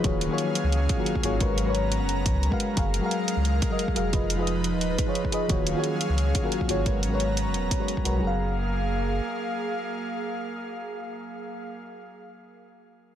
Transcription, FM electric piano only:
0.03 D#3 A#3 F4 F#4 G#4 C#5
0.27 D#3 A#3 F4 F#4
0.32 G#4 C#5
0.97 D#3 A#3 F4 F#4 G#4 A#4
1.22 D#3 A#3 F4 F#4 G#4 C#5
1.39 G#3 F#4 A#4 B4 C#5
1.64 G#3 F#4 A#4
1.68 B4 C#5
2.50 G#3 F#4 A#4 B4 F5
2.76 F#3 F#4 G#4 A#4 F5
2.99 F#3 F#4 G#4
3.04 A#4 F5
3.69 F#3 F#4 G#4 A#4 D#5
3.94 F#3 F#4 G#4 A#4 F5
4.12 F3 F4 G#4 B4 D#5
4.36 F3 F4 G#4
4.41 B4 D#5
5.06 F3 F4 G#4 B4 C#5
5.31 F3 F4 G#4 B4 D#5
5.48 D#3 A#3 F4 F#4 G#4 C#5
5.73 D#3 A#3 F4 F#4
5.78 G#4 C#5
6.42 D#3 A#3 F4 F#4 G#4 A#4
6.67 D#3 A#3 F4 F#4 G#4 C#5
6.84 G#3 F#4 A#4 B4 C#5
7.09 G#3 F#4 A#4
7.13 B4 C#5
7.79 G#3 F#4 A#4 B4 C#5
8.04 G#3 F#4 A#4 B4 C#5
8.18 F#3 F#4
8.22 G#4 A#4
8.27 F5

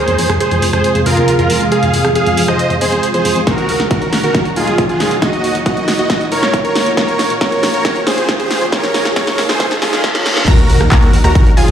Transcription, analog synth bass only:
0.08 F2
0.18 F2
0.29 F2
0.51 F2
0.62 F2
0.73 F2
0.95 F2
1.06 F2
1.17 D#2
1.39 F2
1.50 F2
1.61 F2
1.83 F2
1.94 F2
2.05 F2
2.27 F2
2.37 F2
2.48 F2
2.70 F2
2.81 F2
2.92 F2
3.14 F2
3.25 F2
3.36 F2
3.58 D#2
3.69 D#2
3.80 D#2
4.02 D#2
4.13 D#2
4.24 D#2
4.46 D#2
4.56 D#2
4.67 C#2
4.89 D#2
5.00 D#2
5.11 D#2
5.33 D#2
5.44 D#2
5.55 D#2
5.77 D#2
5.88 D#2
5.99 D#2
6.21 D#2
6.32 D#2
6.43 C#2
6.64 D#2
6.75 D#2
6.86 D#2
7.08 A#1
7.19 A#1
7.30 A#1
7.52 A#1
7.63 A#1
7.74 A#1
7.96 A#1
8.07 A#1
8.18 G#1
8.40 A#1
8.51 A#1
8.62 A#1
8.83 A#1
8.94 A#1
9.05 A#1
9.27 A#1
9.38 A#1
9.49 A#1
9.71 A#1
9.82 A#1
9.93 A#1
10.15 A#1
10.26 A#1
10.37 C2
10.59 D#2
10.70 D#2
10.81 D#2
11.03 D#2
11.13 D#2
11.24 D#2
11.46 D#2
11.57 D#2

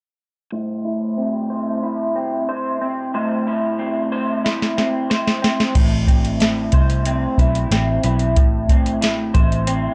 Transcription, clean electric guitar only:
0.52 A2 C5
0.85 E4
1.18 C4
1.50 C5
1.83 E4
2.16 C4
2.49 C5
2.81 C4
3.14 A2 C5
3.47 E4
3.79 C4
4.12 C5
4.44 E4
4.78 C4
5.10 C5
5.42 C4
5.75 A2
6.08 C4
6.41 E4
6.73 C5
7.06 C4
7.39 E4
7.72 C4
8.04 E4
8.37 A2
8.70 C4
9.01 E4
9.34 C5
9.67 C4

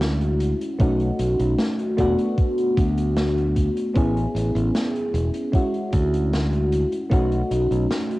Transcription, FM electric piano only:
Already playing: G#3 C#4 E4 F#4
0.79 A3 C#4 D#4 F#4
1.97 A3 B3 D4 F#4
3.94 B3 C#4 E4 G#4
5.52 G#3 C#4 E4 F#4
7.10 A3 C#4 D#4 F#4

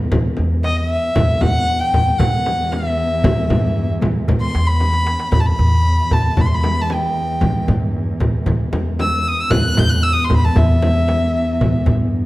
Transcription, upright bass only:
0.12 E3
0.38 E2
1.16 E2
1.42 E2
1.93 E2
2.20 E2
3.24 E3
3.50 G2
4.01 E2
4.28 E3
4.55 E2
5.32 E2
5.59 E2
6.11 E2
6.37 E2
7.42 E3
7.68 G2
8.20 E2
8.46 E3
8.72 E2
9.51 E2
9.78 E2
10.30 E2
10.56 E2
11.61 E3
11.88 G2

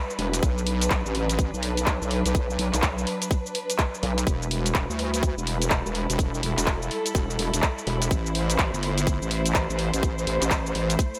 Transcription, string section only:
Already playing: G3 E4 B4
0.43 F#3 D4
4.27 G3 E4
6.19 A4
8.11 A3 C5

